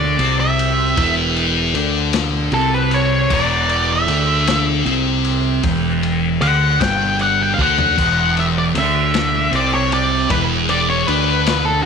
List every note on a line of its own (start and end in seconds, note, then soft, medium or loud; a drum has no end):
0.00 0.15 D2 medium
0.00 0.17 D3 medium
0.00 0.18 D4 medium
0.00 0.36 D5 medium
0.18 0.93 C2 medium
0.18 0.95 C3 medium
0.18 0.96 C4 loud
0.18 ride medium
0.40 1.13 E5 medium
0.59 ride medium
0.96 1.71 E1 medium
0.96 1.73 E2 medium
0.96 1.74 E3 loud
0.96 kick loud
0.96 ride medium
1.36 ride medium
1.74 2.48 D2 medium
1.74 2.52 D3 medium
1.74 2.52 D4 medium
1.74 ride medium
2.13 snare loud
2.13 ride loud
2.52 3.26 C2 loud
2.52 3.29 C3 medium
2.52 3.29 C4 loud
2.52 2.73 A4 medium
2.52 ride medium
2.74 2.94 B4 medium
2.91 3.32 C#5 medium
2.91 ride medium
3.30 4.04 E1 medium
3.30 4.07 E2 medium
3.30 4.07 E3 loud
3.30 kick loud
3.30 crash medium
3.34 3.92 D5 medium
3.69 ride medium
3.92 4.64 E5 loud
4.07 4.81 D2 medium
4.07 4.84 D3 medium
4.07 4.85 D4 loud
4.07 ride medium
4.47 snare loud
4.47 ride loud
4.85 5.59 C2 loud
4.85 5.62 C3 medium
4.85 5.62 C4 loud
4.85 ride medium
5.24 ride medium
5.63 6.37 E1 medium
5.63 6.40 E2 medium
5.63 6.40 E3 medium
5.63 kick loud
5.63 ride medium
6.03 ride medium
6.41 6.77 D2 medium
6.41 6.79 D3 medium
6.41 6.79 D4 loud
6.41 6.80 F#5 medium
6.41 ride medium
6.81 7.54 G1 medium
6.81 7.57 G2 loud
6.81 7.57 G3 medium
6.81 7.16 G5 medium
6.81 kick medium
6.81 snare loud
6.81 ride medium
7.19 7.40 F#5 loud
7.19 ride medium
7.43 7.52 G5 medium
7.54 7.59 F5 medium
7.58 7.94 D2 medium
7.58 7.95 D3 medium
7.58 7.96 D4 medium
7.58 kick medium
7.62 8.33 F#5 loud
7.78 floor tom medium
7.96 8.71 E1 medium
7.96 8.73 E2 medium
7.96 8.74 E3 loud
7.96 kick loud
7.96 crash medium
8.37 8.45 E5 loud
8.37 ride medium
8.58 8.63 D5 loud
8.74 9.48 D2 medium
8.74 9.51 D3 medium
8.74 9.51 D4 medium
8.74 ride medium
8.78 9.50 E5 medium
9.14 snare loud
9.14 ride loud
9.51 10.26 C2 medium
9.51 10.28 C3 medium
9.51 10.28 C4 loud
9.51 ride medium
9.56 9.72 D5 medium
9.74 9.91 C#5 medium
9.92 10.28 D5 medium
9.92 ride medium
10.30 11.03 E1 medium
10.30 11.06 E2 medium
10.30 11.07 E3 loud
10.30 10.41 B4 medium
10.30 kick loud
10.30 ride loud
10.69 10.89 D5 medium
10.69 ride medium
10.90 11.07 C#5 medium
11.07 11.81 D2 medium
11.07 11.84 D3 medium
11.07 11.84 D4 loud
11.07 11.67 B4 medium
11.07 ride medium
11.46 snare loud
11.46 ride loud
11.65 11.82 A4 medium